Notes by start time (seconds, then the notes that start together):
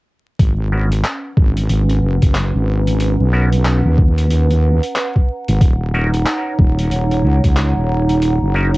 0.39 G#1 C#4, kick, closed hi-hat
0.72 B3 C#4 F#4 A#4 F#5
0.86 B4
0.92 closed hi-hat
1.04 clap, closed hi-hat
1.37 G#1, kick
1.57 closed hi-hat
1.69 G#1, closed hi-hat
1.82 A#5
1.90 closed hi-hat
2.02 F#1
2.22 F#1, kick, closed hi-hat
2.35 clap, closed hi-hat
2.55 G#1
2.87 closed hi-hat
3.00 closed hi-hat
3.20 B1
3.33 B3 C#4 F#4 A#4
3.53 closed hi-hat
3.65 clap, closed hi-hat
3.85 D#2
3.98 kick
4.18 closed hi-hat
4.30 closed hi-hat
4.50 closed hi-hat
4.83 closed hi-hat
4.96 clap, closed hi-hat
5.16 kick
5.48 G#1, closed hi-hat
5.61 D#1 D#4, kick, closed hi-hat
5.78 C#5
5.94 C#4 D#4 F#4 A#4
6.14 closed hi-hat
6.26 clap, closed hi-hat
6.59 D#1, kick
6.79 closed hi-hat
6.91 D#1, closed hi-hat
7.11 closed hi-hat
7.24 C#2
7.44 C#2, kick, closed hi-hat
7.57 clap, closed hi-hat
7.77 D#1
8.09 closed hi-hat
8.22 closed hi-hat
8.42 F#1
8.55 C#4 D#4 F#4 A#4
8.74 closed hi-hat